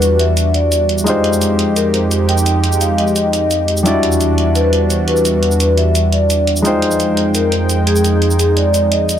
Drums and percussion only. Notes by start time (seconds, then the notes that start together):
0.02 closed hi-hat, cabasa
0.19 closed hi-hat
0.37 closed hi-hat, cabasa
0.54 closed hi-hat
0.72 closed hi-hat, cabasa
0.89 closed hi-hat
0.98 cabasa
1.07 closed hi-hat, cabasa
1.24 closed hi-hat
1.33 cabasa
1.42 closed hi-hat, cabasa
1.59 closed hi-hat
1.76 closed hi-hat, cabasa
1.94 closed hi-hat
2.11 closed hi-hat, cabasa
2.29 closed hi-hat
2.38 cabasa
2.46 closed hi-hat, cabasa
2.64 closed hi-hat, cabasa
2.72 cabasa
2.81 closed hi-hat, cabasa
2.98 closed hi-hat
3.07 cabasa
3.16 closed hi-hat, cabasa
3.33 closed hi-hat, cabasa
3.51 closed hi-hat, cabasa
3.68 closed hi-hat
3.77 cabasa
3.86 closed hi-hat, cabasa
4.03 closed hi-hat
4.12 cabasa
4.21 closed hi-hat, cabasa
4.38 closed hi-hat
4.55 closed hi-hat, cabasa
4.73 closed hi-hat
4.90 closed hi-hat, cabasa
5.08 closed hi-hat
5.17 cabasa
5.25 closed hi-hat, cabasa
5.43 closed hi-hat
5.52 cabasa
5.60 closed hi-hat, cabasa
5.78 closed hi-hat
5.95 closed hi-hat, cabasa
6.12 closed hi-hat
6.30 closed hi-hat, cabasa
6.47 closed hi-hat
6.56 cabasa
6.65 closed hi-hat, cabasa
6.82 closed hi-hat
6.91 cabasa
7.00 closed hi-hat, cabasa
7.17 closed hi-hat
7.35 closed hi-hat, cabasa
7.52 closed hi-hat
7.69 closed hi-hat, cabasa
7.87 closed hi-hat
7.96 cabasa
8.04 closed hi-hat, cabasa
8.22 closed hi-hat
8.31 cabasa
8.39 closed hi-hat, cabasa
8.57 closed hi-hat
8.74 closed hi-hat, cabasa
8.92 closed hi-hat
9.09 closed hi-hat, cabasa